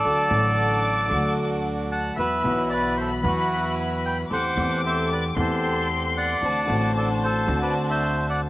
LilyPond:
<<
  \new Staff \with { instrumentName = "Violin section" } { \time 4/4 \key d \mixolydian \tempo 4 = 113 a''4 d'''2~ d'''8 r8 | b''4 b''2. | d'''2 c'''2 | a''1 | }
  \new Staff \with { instrumentName = "Bandoneon" } { \time 4/4 \key d \mixolydian <a' d''>2~ <a' d''>8 r4 <fis'' a''>8 | <b' e''>4 <b' d''>8 <a' c''>8 <fis' b'>4 r8 <g'' b''>8 | <c'' fis''>4 <c'' e''>8 <b' d''>8 <a' c''>4 r8 <d'' fis''>8~ | <d'' fis''>4 <a' d''>8 <a' c''>8. <b' d''>8 <c'' e''>8. <d'' fis''>8 | }
  \new Staff \with { instrumentName = "String section" } { \time 4/4 \key d \mixolydian <d' fis' a'>8 <d' fis' a'>4. <d' fis' a'>2 | <e' fis' b'>8 <e' fis' b'>4. <e' fis' b'>2 | <c' g' a'>8 <c' g' a'>4. <c' g' a'>2 | <d' fis' c''>8 <d' fis' c''>4. <d' fis' c''>2 | }
  \new Staff \with { instrumentName = "Grand piano" } { \clef bass \time 4/4 \key d \mixolydian <d, d fis a fis'>8 <a,, a, d fis a fis'>4. <d, d fis a fis'>2 | <e, e fis b fis'>8 <b,, b, e fis b fis'>4. <e, e fis b fis'>2 | <e, e a c' g'>8 <e, e a c' g'>4. <e, e a c' g'>2 | <d, d a c' fis'>8 <a,, a, d a c' fis'>4. <d, d a c' fis'>2 | }
  \new Staff \with { instrumentName = "Upright bass" } { \clef bass \time 4/4 \key d \mixolydian d,8 a,,4. d,2 | e,8 b,,4. e,2 | e,8 e,4. e,2 | d,8 a,,4. d,2 | }
>>